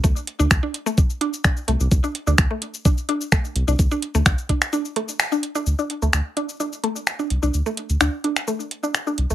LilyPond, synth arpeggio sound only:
\new Staff \with { instrumentName = "Synth arpeggio sound" } { \time 4/4 \key c \dorian \tempo 4 = 128 a16 r8 d'16 r16 d'16 r16 a16 r8 d'16 r16 d'16 r16 a16 r16 | r16 d'16 r16 d'16 r16 a16 r8 d'16 r16 d'16 r16 a16 r8 d'16 | r16 d'16 r16 a16 r8 d'16 r16 d'16 r16 a16 r8 d'16 r16 d'16 | r16 d'16 r16 a16 r8 d'16 r16 d'16 r16 a16 r8 d'16 r16 d'16 |
r16 a16 r8 d'16 r16 d'16 r16 a16 r8 d'16 r16 d'16 r16 a16 | }